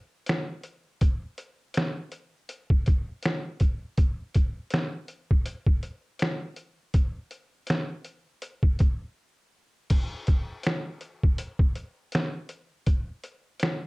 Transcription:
0.26 snare, closed hi-hat
0.63 closed hi-hat
1.01 kick, closed hi-hat
1.38 closed hi-hat
1.74 snare, closed hi-hat
2.12 closed hi-hat
2.49 closed hi-hat
2.70 kick
2.86 kick, closed hi-hat
3.23 snare, closed hi-hat
3.60 kick, closed hi-hat
3.97 kick, closed hi-hat
4.34 kick, closed hi-hat
4.70 snare, closed hi-hat
5.08 closed hi-hat
5.31 kick
5.46 closed hi-hat
5.67 kick
5.83 closed hi-hat
6.19 snare, closed hi-hat
6.56 closed hi-hat
6.94 kick, closed hi-hat
7.31 closed hi-hat
7.67 snare, closed hi-hat
8.05 closed hi-hat
8.42 closed hi-hat
8.63 kick
8.79 kick, closed hi-hat
9.90 kick, closed hi-hat, crash
10.27 kick, closed hi-hat
10.63 snare, closed hi-hat
11.01 closed hi-hat
11.23 kick
11.38 closed hi-hat
11.59 kick
11.75 closed hi-hat
12.12 snare, closed hi-hat
12.49 closed hi-hat
12.86 kick, closed hi-hat
13.24 closed hi-hat
13.60 snare, closed hi-hat

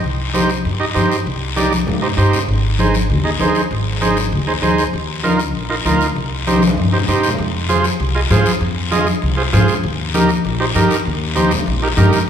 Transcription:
0.03 C2, high conga, long guiro
0.34 D#4 G4 C5, high conga, short guiro
0.50 short guiro
0.65 G2, high conga, long guiro
0.80 D#4 G4 D#5
0.94 G2 D#4 G4 C5, high conga, short guiro
1.12 short guiro
1.26 C2, high conga, long guiro
1.56 D#4 G4 D5, high conga, short guiro
1.72 high conga, short guiro
1.87 G2, low conga, long guiro
2.02 D#4 G4 C5
2.17 G2 D#4 G4 C5, short guiro
2.33 low conga, short guiro
2.48 G#1, high conga, long guiro
2.79 D#4 G#4 C5, high conga, short guiro
2.94 short guiro
3.09 D#2, high conga, long guiro
3.24 D#4 G#4 D#5
3.40 D#2 D#4 G#4 C5, high conga, short guiro
3.55 short guiro
3.71 G#1, high conga, long guiro
4.01 D#4 G#4 C5, high conga, short guiro
4.17 short guiro
4.32 D#2, high conga, long guiro
4.47 D#4 G#4 C5
4.62 D#2 D#4 G#4 C5, high conga, short guiro
4.78 short guiro
4.93 D#2, high conga, long guiro
5.23 D#4 F4 A#4, high conga, short guiro
5.40 short guiro
5.54 A#1, high conga, long guiro
5.70 D#4 F4 A#4
5.85 D2 D#4 F4 A#4, high conga, short guiro
6.01 short guiro
6.15 C2, high conga, long guiro
6.47 D#4 G4 C5, high conga, short guiro
6.57 high conga
6.62 short guiro
6.67 high conga
6.77 G2, long guiro
6.93 D#4 G4 C5
6.99 low conga
7.08 G2 D#4 G4 C5, short guiro
7.23 short guiro
7.28 low conga
7.39 F2, high conga, long guiro
7.69 F4 G#4 C5, high conga, short guiro
7.84 short guiro
8.00 C2, high conga, long guiro
8.15 F4 G#4 D#5
8.30 G#2 F4 G#4 C5, high conga, short guiro
8.46 short guiro
8.61 F2, high conga, long guiro
8.91 F4 G#4 D#5, high conga, short guiro
9.07 short guiro
9.22 C2, high conga, long guiro
9.37 F4 G#4 C5
9.53 G#2 F4 G#4 C5, high conga, low conga, short guiro
9.68 short guiro
9.84 D#2, high conga, long guiro
10.14 D#4 G4 A#4, high conga, short guiro
10.29 short guiro
10.45 A#1, high conga, long guiro
10.60 D#4 G4 C5
10.75 G2 D#4 G4 A#4, high conga, short guiro
10.91 short guiro
11.06 D#2, high conga, long guiro
11.35 D#4 G4 C5, high conga, short guiro
11.51 low conga, short guiro
11.66 A#1, high conga, long guiro
11.82 D#4 G4 A#4
11.97 G2 D#4 G4 A#4, high conga, low conga, short guiro
12.13 short guiro

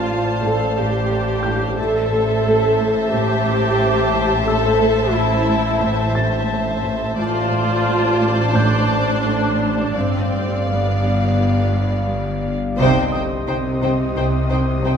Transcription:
Already playing: A1 A2 F4 A4 C5 D5 F5 A5
0.11 A3
0.44 A2 A4
0.78 A2 G4
1.11 A3
1.43 A2 G5 G6
1.76 A1 A2 A4 C5 E5 A5
2.12 A2
2.46 A3
2.80 A3
3.13 A2 G4
3.46 A2
3.79 A3
4.13 A2
4.46 A2 A4 E6
4.80 A2
5.14 A3 E4
5.48 A3
5.82 A2
6.15 A2 A6
6.50 A3
6.83 A2
7.17 A1 A2 F4 A4 C5 D5 A5
7.51 A2
7.86 A3
8.20 A3
8.54 A2 D4 G6
8.89 A2
9.24 A3
9.59 A2
9.95 G1 G2 C4 G4 D5 F5
10.32 G2
10.67 G3 B3
11.02 G3
11.37 G2
11.72 G2
12.08 G3
12.43 G2
12.78 C2 C3 D#4 G4 C5 D#5 G5 C6 D#6
13.12 C3 D#4 C5 G5 D#6
13.47 C2 C3 D#4 C5 G5
13.81 C3 D#4 C5 G5
14.16 C2 C3 D#4 C5 G5
14.49 C3 D#4 C5 G5
14.83 C2 C3 D#4 C5 G5

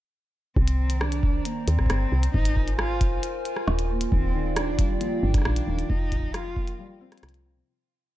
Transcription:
0.56 C2 D#3 C4 C5 D5 A#5, kick
0.68 closed hi-hat
0.90 closed hi-hat
1.01 D4, cross-stick
1.12 closed hi-hat
1.23 kick
1.45 A#3, closed hi-hat
1.68 D#2 C4, closed hi-hat
1.79 kick, cross-stick
1.82 kick
1.86 G1, kick, cross-stick, closed hi-hat
2.12 C2
2.23 closed hi-hat
2.34 G#1 D#4 F4 A#4 G#5, kick
2.45 closed hi-hat
2.56 kick
2.68 closed hi-hat
2.79 F4, cross-stick
3.01 kick, closed hi-hat
3.23 closed hi-hat
3.45 closed hi-hat
3.56 cross-stick
3.68 D#1, cross-stick
3.79 closed hi-hat
3.90 A#3
4.01 closed hi-hat
4.12 D#1 D#3 C4 D5 F5 G5, kick
4.34 D#3
4.56 D4 D#4, cross-stick, closed hi-hat
4.79 G3, kick, closed hi-hat
5.01 F3 A#3, closed hi-hat
5.23 G1 D#3 D4
5.34 kick, cross-stick, closed hi-hat
5.38 cross-stick
5.42 cross-stick
5.45 A#1 D#4, cross-stick
5.56 closed hi-hat
5.68 D#1 D#3
5.79 closed hi-hat
5.90 F1 F3 D#4, kick
6.12 F3, kick, closed hi-hat
6.16 kick
6.19 kick
6.23 kick
6.27 kick
6.31 F4, kick, cross-stick, closed hi-hat
6.56 A#3, kick
6.68 closed hi-hat
6.79 G3
7.01 C4
7.12 cross-stick, closed hi-hat
7.18 closed hi-hat
7.23 C2 F3, cross-stick, closed hi-hat
7.29 closed hi-hat
7.34 closed hi-hat
7.45 C4
7.56 C3

